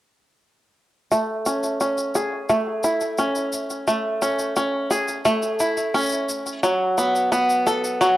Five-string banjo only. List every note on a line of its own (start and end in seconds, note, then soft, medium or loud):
1.11 2.49 A3 medium
1.46 1.79 C#4 soft
1.81 3.17 C#4 medium
2.15 4.89 G#4 medium
2.49 3.87 A3 medium
2.84 5.59 E4 medium
3.18 4.21 C#4 medium
3.87 5.25 A3 medium
4.22 4.55 C#4 medium
4.57 5.93 C#4 medium
4.91 6.70 G#4 medium
5.25 6.63 A3 medium
5.60 6.70 E4 medium
5.94 6.70 C#4 medium
6.63 8.00 F#3 medium
6.98 7.31 B3 medium
7.32 8.17 B3 medium
7.67 8.17 A4 medium
8.01 8.17 F#3 medium